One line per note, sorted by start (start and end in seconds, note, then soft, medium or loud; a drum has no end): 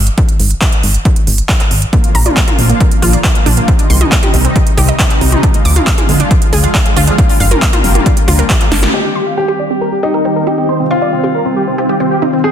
0.00 0.10 G#1 loud
0.07 closed hi-hat medium
0.18 kick loud
0.18 closed hi-hat medium
0.29 closed hi-hat medium
0.40 0.54 G#1 loud
0.40 open hi-hat loud
0.51 closed hi-hat medium
0.61 kick loud
0.61 clap loud
0.61 closed hi-hat medium
0.72 closed hi-hat medium
0.83 0.98 G#1 loud
0.83 open hi-hat loud
0.94 closed hi-hat medium
1.05 kick loud
1.05 closed hi-hat medium
1.16 closed hi-hat medium
1.27 1.41 G#1 loud
1.27 open hi-hat loud
1.38 closed hi-hat medium
1.49 kick loud
1.49 clap loud
1.49 closed hi-hat medium
1.60 clap soft
1.60 closed hi-hat medium
1.71 1.85 G#1 medium
1.71 open hi-hat loud
1.82 closed hi-hat medium
1.93 2.08 D3 medium
1.93 2.08 F3 medium
1.93 2.08 A#3 medium
1.93 1.96 A#3 medium
1.93 2.08 F4 medium
1.93 kick loud
1.93 closed hi-hat medium
2.04 closed hi-hat medium
2.15 2.29 A#1 loud
2.15 2.18 A#5 loud
2.15 open hi-hat loud
2.26 2.41 D3 medium
2.26 2.41 F3 medium
2.26 2.41 A#3 medium
2.26 2.41 F4 medium
2.26 2.33 D5 medium
2.26 closed hi-hat medium
2.26 mid tom medium
2.37 kick loud
2.37 clap loud
2.37 closed hi-hat medium
2.48 2.63 D3 medium
2.48 2.63 F3 medium
2.48 2.63 A#3 medium
2.48 2.51 F4 loud
2.48 2.63 F4 medium
2.48 closed hi-hat medium
2.48 mid tom medium
2.59 2.73 A#1 loud
2.59 open hi-hat loud
2.69 2.85 D3 medium
2.69 2.85 F3 medium
2.69 2.75 A#3 medium
2.69 2.85 A#3 medium
2.69 2.85 F4 medium
2.69 closed hi-hat medium
2.80 kick loud
2.80 closed hi-hat medium
2.91 closed hi-hat medium
3.02 3.17 A#1 medium
3.02 3.18 D3 medium
3.02 3.18 F3 medium
3.02 3.18 A#3 medium
3.02 3.07 F4 loud
3.02 3.18 F4 medium
3.02 open hi-hat loud
3.13 3.21 D5 medium
3.13 closed hi-hat medium
3.24 3.40 D3 medium
3.24 3.40 F3 medium
3.24 3.40 A#3 medium
3.24 3.40 F4 medium
3.24 3.32 A#4 medium
3.24 kick loud
3.24 clap loud
3.24 closed hi-hat medium
3.35 closed hi-hat medium
3.46 3.60 A#1 medium
3.46 3.62 D3 medium
3.46 3.61 F3 medium
3.46 3.61 A#3 medium
3.46 3.51 D4 loud
3.46 3.61 F4 medium
3.46 open hi-hat loud
3.57 3.62 A#3 medium
3.57 closed hi-hat medium
3.68 3.83 C3 medium
3.68 3.83 D#3 medium
3.68 3.83 G3 medium
3.68 3.71 C4 medium
3.68 3.83 D#4 medium
3.68 kick loud
3.68 closed hi-hat medium
3.79 closed hi-hat medium
3.90 4.04 C2 loud
3.90 3.93 C6 loud
3.90 open hi-hat loud
4.01 4.16 C3 medium
4.01 4.16 D#3 medium
4.01 4.16 G3 medium
4.01 4.16 D#4 medium
4.01 4.09 D#5 medium
4.01 closed hi-hat medium
4.01 mid tom medium
4.12 kick loud
4.12 clap loud
4.12 closed hi-hat medium
4.23 4.38 C3 medium
4.23 4.38 D#3 medium
4.23 4.38 G3 medium
4.23 4.38 D#4 medium
4.23 4.26 G4 loud
4.23 closed hi-hat medium
4.23 mid tom medium
4.34 4.48 C2 loud
4.34 open hi-hat loud
4.45 4.60 C3 medium
4.45 4.60 D#3 medium
4.45 4.60 G3 medium
4.45 4.50 C4 medium
4.45 4.60 D#4 medium
4.45 closed hi-hat medium
4.56 kick loud
4.56 closed hi-hat medium
4.67 closed hi-hat medium
4.77 4.92 C2 medium
4.77 4.93 C3 medium
4.77 4.93 D#3 medium
4.77 4.93 G3 medium
4.77 4.93 D#4 medium
4.77 4.83 G4 loud
4.77 open hi-hat loud
4.88 4.96 D#5 medium
4.88 closed hi-hat medium
4.99 5.15 C3 medium
4.99 5.15 D#3 medium
4.99 5.15 G3 medium
4.99 5.15 D#4 medium
4.99 5.07 C5 medium
4.99 kick loud
4.99 clap loud
4.99 closed hi-hat medium
5.10 clap soft
5.10 closed hi-hat medium
5.21 5.36 C2 loud
5.21 5.37 C3 medium
5.21 5.37 D#3 medium
5.21 5.37 G3 medium
5.21 5.26 D#4 loud
5.21 5.37 D#4 medium
5.21 open hi-hat loud
5.32 5.37 C4 medium
5.32 closed hi-hat medium
5.32 mid tom medium
5.43 5.59 D3 medium
5.43 5.59 F3 medium
5.43 5.59 G#3 medium
5.43 5.46 D4 medium
5.43 5.59 F4 medium
5.43 kick loud
5.43 closed hi-hat medium
5.54 closed hi-hat medium
5.65 5.79 D2 loud
5.65 5.68 D6 loud
5.65 open hi-hat medium
5.76 5.91 D3 medium
5.76 5.91 F3 medium
5.76 5.91 G#3 medium
5.76 5.91 F4 medium
5.76 5.84 F5 medium
5.76 closed hi-hat medium
5.76 mid tom medium
5.87 kick loud
5.87 clap loud
5.87 closed hi-hat medium
5.98 6.13 D3 medium
5.98 6.13 F3 medium
5.98 6.13 G#3 medium
5.98 6.13 F4 medium
5.98 6.01 G#4 loud
5.98 closed hi-hat medium
5.98 mid tom medium
6.09 6.23 D2 loud
6.09 open hi-hat medium
6.20 6.35 D3 medium
6.20 6.35 F3 medium
6.20 6.35 G#3 medium
6.20 6.25 D4 medium
6.20 6.35 F4 medium
6.20 closed hi-hat medium
6.31 kick loud
6.31 closed hi-hat medium
6.42 closed hi-hat medium
6.53 6.67 D2 medium
6.53 6.68 D3 medium
6.53 6.68 F3 medium
6.53 6.68 G#3 medium
6.53 6.68 F4 medium
6.53 6.58 G#4 loud
6.53 open hi-hat loud
6.64 6.71 F5 medium
6.64 closed hi-hat medium
6.75 6.90 D3 medium
6.75 6.90 F3 medium
6.75 6.90 G#3 medium
6.75 6.90 F4 medium
6.75 6.82 D5 medium
6.75 kick loud
6.75 clap loud
6.75 closed hi-hat medium
6.86 closed hi-hat medium
6.96 7.11 D2 medium
6.96 7.12 D3 medium
6.96 7.12 F3 medium
6.96 7.12 G#3 medium
6.96 7.12 F4 medium
6.96 7.02 F4 loud
6.96 open hi-hat loud
7.07 7.13 D4 medium
7.07 closed hi-hat medium
7.18 7.34 D3 medium
7.18 7.34 G3 medium
7.18 7.21 A#3 medium
7.18 7.34 A#3 medium
7.18 7.34 F4 medium
7.18 kick loud
7.18 closed hi-hat medium
7.29 open hi-hat medium
7.40 7.55 G1 loud
7.40 7.43 F5 loud
7.40 open hi-hat loud
7.51 7.67 D3 medium
7.51 7.67 G3 medium
7.51 7.67 A#3 medium
7.51 7.67 F4 medium
7.51 7.59 A#4 medium
7.51 closed hi-hat medium
7.51 mid tom medium
7.62 kick loud
7.62 clap loud
7.62 closed hi-hat medium
7.73 7.89 D3 medium
7.73 7.88 G3 medium
7.73 7.88 A#3 medium
7.73 7.76 F4 loud
7.73 7.88 F4 medium
7.73 closed hi-hat medium
7.73 mid tom medium
7.84 7.98 G1 loud
7.84 open hi-hat medium
7.95 8.10 D3 medium
7.95 8.10 G3 medium
7.95 8.00 A#3 medium
7.95 8.10 A#3 medium
7.95 8.10 F4 medium
7.95 closed hi-hat medium
7.95 mid tom medium
8.06 kick loud
8.06 closed hi-hat medium
8.17 closed hi-hat medium
8.28 8.42 D2 loud
8.28 8.43 D3 medium
8.28 8.43 G3 medium
8.28 8.43 A#3 medium
8.28 8.33 F4 loud
8.28 8.43 F4 medium
8.28 open hi-hat loud
8.39 8.46 A#4 medium
8.39 closed hi-hat medium
8.50 8.65 D3 medium
8.50 8.65 G3 medium
8.50 8.65 A#3 medium
8.50 8.65 F4 medium
8.50 8.57 G4 medium
8.50 kick loud
8.50 clap loud
8.50 closed hi-hat medium
8.61 clap soft
8.61 closed hi-hat medium
8.72 8.86 G1 loud
8.72 8.87 D3 medium
8.72 8.87 G3 medium
8.72 8.87 A#3 medium
8.72 8.77 D4 loud
8.72 8.87 F4 medium
8.72 snare medium
8.72 open hi-hat loud
8.83 8.88 A#3 medium
8.83 snare loud
8.83 closed hi-hat medium
8.83 mid tom medium
8.94 9.09 D#3 medium
8.94 9.09 G3 medium
8.94 9.09 C4 medium
8.94 8.97 C4 medium
8.94 9.09 G4 medium
8.94 9.35 G4 medium
8.94 9.02 D#5 medium
9.05 9.13 G4 medium
9.15 9.24 G4 medium
9.15 9.19 C6 loud
9.26 9.42 D#3 medium
9.26 9.42 G3 medium
9.26 9.42 C4 medium
9.26 9.42 G4 medium
9.26 9.34 D#5 medium
9.26 9.35 F5 medium
9.37 9.46 G4 medium
9.37 9.94 G4 medium
9.48 9.64 D#3 medium
9.48 9.64 G3 medium
9.48 9.64 C4 medium
9.48 9.51 G4 loud
9.48 9.64 G4 medium
9.48 9.57 G4 medium
9.59 9.68 D5 medium
9.70 9.86 D#3 medium
9.70 9.86 G3 medium
9.70 9.86 C4 medium
9.70 9.75 C4 medium
9.70 9.86 G4 medium
9.70 9.79 G4 medium
9.81 9.89 A#4 medium
9.92 10.00 G4 medium
10.03 10.18 D#3 medium
10.03 10.18 G3 medium
10.03 10.18 C4 medium
10.03 10.82 D#4 medium
10.03 10.08 G4 medium
10.03 10.11 G4 medium
10.03 10.18 G4 medium
10.14 10.22 A#4 medium
10.14 10.22 D#5 medium
10.25 10.40 D#3 medium
10.25 10.40 G3 medium
10.25 10.40 C4 medium
10.25 10.40 G4 medium
10.25 10.33 G4 medium
10.25 10.33 C5 medium
10.36 10.44 A#4 medium
10.47 10.62 D#3 medium
10.47 10.62 G3 medium
10.47 10.62 C4 medium
10.47 10.52 D#4 loud
10.47 10.55 G4 medium
10.47 10.62 G4 medium
10.58 10.63 C4 medium
10.58 10.66 G4 medium
10.69 10.84 D#3 medium
10.69 10.84 G3 medium
10.69 10.72 C4 medium
10.69 10.84 C4 medium
10.69 10.84 F4 medium
10.69 10.77 C5 medium
10.80 10.88 C4 medium
10.91 10.99 C4 medium
10.91 12.35 F4 medium
10.91 10.94 C6 loud
11.02 11.17 D#3 medium
11.02 11.17 G3 medium
11.02 11.17 C4 medium
11.02 11.17 F4 medium
11.02 11.10 D5 medium
11.02 11.09 D#5 medium
11.13 11.21 C4 medium
11.23 11.39 D#3 medium
11.23 11.39 G3 medium
11.23 11.32 C4 medium
11.23 11.39 C4 medium
11.23 11.39 F4 medium
11.23 11.27 G4 medium
11.35 11.43 A#4 medium
11.45 11.61 D#3 medium
11.45 11.61 G3 medium
11.45 11.54 C4 medium
11.45 11.51 C4 medium
11.45 11.61 C4 medium
11.45 11.61 F4 medium
11.56 11.65 G4 medium
11.67 11.76 C4 medium
11.78 11.94 D#3 medium
11.78 11.94 G3 medium
11.78 11.94 C4 medium
11.78 11.87 C4 medium
11.78 11.94 F4 medium
11.78 11.83 G4 loud
11.89 11.98 G4 medium
11.89 11.97 D#5 medium
12.00 12.16 D#3 medium
12.00 12.16 G3 medium
12.00 12.08 C4 medium
12.00 12.16 C4 medium
12.00 12.16 F4 medium
12.00 12.08 C5 medium
12.11 12.19 G4 medium
12.22 12.37 D#3 medium
12.22 12.37 G3 medium
12.22 12.30 C4 medium
12.22 12.37 C4 medium
12.22 12.27 D#4 loud
12.22 12.37 F4 medium
12.33 12.41 C4 medium
12.33 12.38 C4 medium
12.44 12.52 D#3 medium
12.44 12.52 G#3 medium
12.44 12.47 C4 medium
12.44 12.52 C4 medium
12.44 12.52 G4 medium
12.44 12.52 G#4 medium
12.44 12.52 G5 medium